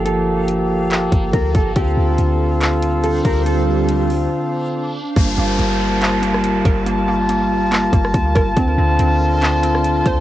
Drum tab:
HH |x---x---x-x-x-x-|x---x---x-x-x-x-|x---x-o---------|x---x---x-x-x-x-|
CP |--------x-------|--------x-------|----------------|--------x-------|
SD |----------------|----------------|----------------|-----------r----|
BD |----------o-o-o-|o-------------o-|----------------|o-------------o-|

HH |x---x---x-x-x-x-|x---x---x-x-x-x-|
CP |--------x-------|--------x-------|
SD |-----------r--r-|-----------r----|
BD |----------o-o-o-|o-------------o-|